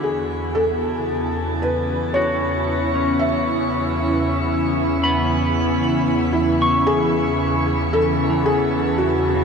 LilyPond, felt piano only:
\new Staff \with { instrumentName = "Felt piano" } { \time 3/4 \key cis \minor \tempo 4 = 57 gis'8 a'4 b'8 cis''4 | e''2~ e''8 r8 | e'8 gis'4 a'8 gis'8 fis'8 | }